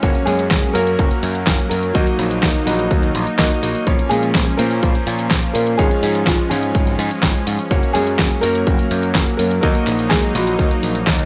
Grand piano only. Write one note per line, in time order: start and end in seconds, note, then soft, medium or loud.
0.26 0.72 G#3 medium
0.26 0.76 G#4 loud
0.74 1.67 A#3 medium
0.74 1.68 A#4 loud
1.70 1.94 A#3 medium
1.70 1.95 A#4 loud
1.94 2.40 F#3 medium
1.94 2.44 F#4 loud
2.42 2.66 D#3 medium
2.42 2.65 D#4 medium
2.66 3.12 F#3 medium
2.66 3.11 F#4 medium
4.09 4.56 G#3 medium
4.09 4.60 G#4 loud
4.57 5.51 A#3 medium
4.57 5.50 A#4 loud
5.54 5.78 A#3 medium
5.54 5.79 A#4 loud
5.77 6.24 G#3 medium
5.77 6.28 G#4 loud
6.25 6.50 F3 medium
6.25 6.51 F4 medium
6.49 6.96 G#3 medium
6.49 6.95 G#4 medium
7.93 8.40 G#3 medium
7.93 8.44 G#4 loud
8.41 9.35 A#3 medium
8.41 9.36 A#4 loud
9.37 9.62 A#3 medium
9.37 9.60 A#4 loud
9.61 10.08 A#3 medium
9.61 10.12 A#4 loud
10.09 10.34 G#3 medium
10.09 10.35 G#4 medium
10.33 10.80 F#3 medium
10.33 10.79 F#4 medium